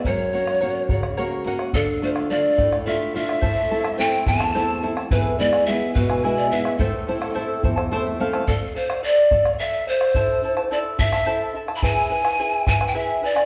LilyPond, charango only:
\new Staff \with { instrumentName = "Charango" } { \time 6/8 \key a \minor \tempo 4. = 71 <ais' cis'' fis''>8 <ais' cis'' fis''>16 <cis'' fis''>16 <ais' cis'' fis''>8 <ais' cis'' fis''>16 <cis'' fis''>16 <ais' cis'' fis''>8 <ais' cis'' fis''>16 <cis'' fis''>16 | <a' d'' f''>8 <a' d'' f''>16 <d'' f''>16 <a' d'' f''>8 <a' d'' f''>16 <d'' f''>16 <a' d'' f''>8 <a' d'' f''>16 <d'' f''>16 | <e' a' c'' e'' a''>8 <e' a' e'' a''>16 <e' a' a''>16 <e' a' c'' e'' a''>8 <e' a' e'' a''>16 <e' a' a''>16 <e' a' c'' e'' a''>8 <e' a' e'' a''>16 <e' a' a''>16 | <e' gis' b' e'' gis''>8 <e' b' e'' gis''>16 <e' b' gis''>16 <e' gis' b' e'' gis''>8 <e' b' e'' gis''>16 <e' b' gis''>16 <e' gis' b' e'' gis''>8 <e' b' e'' gis''>16 <e' b' gis''>16 |
<e' a' c'' e'' a''>8 <e' c'' e'' a''>16 <e' c'' a''>16 <e' a' c'' e'' a''>8 <e' c'' e'' a''>16 <e' c'' a''>16 <e' a' c'' e'' a''>8 <e' c'' e'' a''>16 <e' c'' a''>16 | <a' d'' f''>8 <a' d'' f''>16 <d'' f''>16 <a' d'' f''>8 <a' d'' f''>16 <d'' f''>16 <a' d'' f''>8 <a' d'' f''>16 <d'' f''>16 | <e' a' c'' e'' a''>8 <e' a' e'' a''>16 <e' a' a''>16 <e' a' c'' e'' a''>8 <e' a' e'' a''>16 <e' a' a''>16 <e' a' c'' e'' a''>8 <e' a' e'' a''>16 <e' a' a''>16 | <e' gis' b' e'' gis''>8 <e' b' e'' gis''>16 <e' b' gis''>16 <e' gis' b' e'' gis''>8 <e' b' e'' gis''>16 <e' b' gis''>16 <e' gis' b' e'' gis''>8 <e' b' e'' gis''>16 <e' b' gis''>16 | }